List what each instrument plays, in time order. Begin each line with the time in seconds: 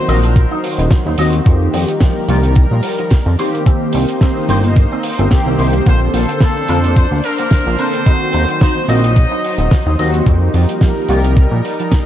Already playing: analog synth pad D#3 F#3 C5
0.08 analog synth bass A#1, analog polysynth D#3 A#3 C4 F#4, trumpet section A#4, clean electric guitar D#5, open hi-hat
0.23 clean electric guitar D4, closed hi-hat
0.36 kick, closed hi-hat
0.51 clean electric guitar D#4
0.64 open hi-hat
0.78 analog synth bass D#1, clean electric guitar D#4, closed hi-hat
0.91 kick, snare, closed hi-hat
1.06 analog synth bass D#2, clean electric guitar D#4
1.18 analog synth bass D#2, analog polysynth D#3 A#3 C4 F#4, clean electric guitar D#5, open hi-hat
1.33 closed hi-hat
1.45 analog synth bass F2, analog polysynth F3 A#3 D#4 G4, clean electric guitar F3, analog synth pad G3 A#4, kick, closed hi-hat
1.74 analog synth bass F2, clean electric guitar F3, open hi-hat
1.88 closed hi-hat
2.00 clean electric guitar F3, kick, snare, closed hi-hat
2.28 analog synth bass C2, analog polysynth F3 A#3 D#4 G4, clean electric guitar F4, open hi-hat
2.43 clean electric guitar D#3, closed hi-hat
2.55 kick, closed hi-hat
2.71 analog synth bass A#2, clean electric guitar F3
2.83 open hi-hat
2.99 clean electric guitar F3, closed hi-hat
3.11 kick, snare, closed hi-hat
3.26 analog synth bass F2, clean electric guitar F3
3.39 analog polysynth D#3 A#3 C4 G4, analog synth pad A#3 D#4 C5, clean electric guitar C5, open hi-hat
3.55 closed hi-hat
3.66 analog polysynth D#3 A#3 C4 G4, clean electric guitar C4, kick, closed hi-hat
3.93 analog synth bass C2, clean electric guitar C4, open hi-hat
4.09 closed hi-hat
4.21 clean electric guitar C4, kick, snare, closed hi-hat
4.48 analog synth bass G1, analog polysynth D#3 A#3 C4 G4, clean electric guitar C5, open hi-hat
4.64 clean electric guitar A#3, closed hi-hat
4.76 kick, closed hi-hat
4.92 clean electric guitar C4
5.03 open hi-hat
5.18 analog synth bass G1, analog polysynth D#3 A#3 C4 A#4, clean electric guitar C4, closed hi-hat
5.31 analog polysynth D#3 A#3 C4 G4, kick, snare, closed hi-hat
5.46 analog synth bass C2, clean electric guitar C4
5.59 analog synth bass C2, clean electric guitar C5, open hi-hat
5.73 closed hi-hat
5.86 analog synth bass A#1, analog polysynth D3 A#3 C4 A4, clean electric guitar A#3, analog synth pad D4, trumpet section C5, kick, closed hi-hat
6.14 analog synth bass A#1, clean electric guitar A#3, trumpet section A4, open hi-hat
6.29 closed hi-hat
6.40 clean electric guitar A#3, trumpet section A4, kick, snare, closed hi-hat
6.68 analog synth bass F2, analog polysynth D3 A#3 C4 A4, clean electric guitar A#4, open hi-hat
6.84 clean electric guitar A#3, closed hi-hat
6.96 trumpet section C5, kick, closed hi-hat
7.11 analog synth bass D2, clean electric guitar A#3
7.23 trumpet section A#4, open hi-hat
7.38 clean electric guitar A#3, closed hi-hat
7.51 kick, snare, closed hi-hat
7.66 analog synth bass A#1, clean electric guitar A#3
7.78 analog polysynth D3 A#3 C4 A4, clean electric guitar A#4, trumpet section C5, open hi-hat
7.93 closed hi-hat
8.06 analog polysynth D#3 A#3 C4 F#4, analog synth pad F#3 D#4, clean electric guitar D#4, kick, closed hi-hat
8.33 analog synth bass D#2, clean electric guitar D#4, open hi-hat
8.48 closed hi-hat
8.61 clean electric guitar D#4, trumpet section C5, kick, snare, closed hi-hat
8.88 analog synth bass A#1, analog polysynth D#3 A#3 C4 F#4, trumpet section D#5, clean electric guitar D#5, open hi-hat
9.04 clean electric guitar D#4, closed hi-hat
9.16 kick, closed hi-hat
9.31 clean electric guitar D#4
9.44 open hi-hat
9.58 analog synth bass D#1, clean electric guitar D#4, closed hi-hat
9.71 kick, snare, closed hi-hat
9.86 analog synth bass D#2, clean electric guitar D#4
9.98 analog synth bass D#2, analog polysynth D#3 A#3 C4 F#4, clean electric guitar D#5, open hi-hat
10.14 closed hi-hat
10.25 analog synth bass F2, analog polysynth F3 A#3 D#4 G4, clean electric guitar F3, analog synth pad G3 D#4 A#4, kick, closed hi-hat
10.54 analog synth bass F2, clean electric guitar F3, open hi-hat
10.69 closed hi-hat
10.81 clean electric guitar F3, kick, snare, closed hi-hat
11.09 analog synth bass C2, analog polysynth F3 A#3 D#4 G4, clean electric guitar F4, open hi-hat
11.24 clean electric guitar F3, closed hi-hat
11.37 kick, closed hi-hat
11.51 analog synth bass A#2, clean electric guitar F3
11.65 open hi-hat
11.79 clean electric guitar F3, closed hi-hat
11.92 kick, snare, closed hi-hat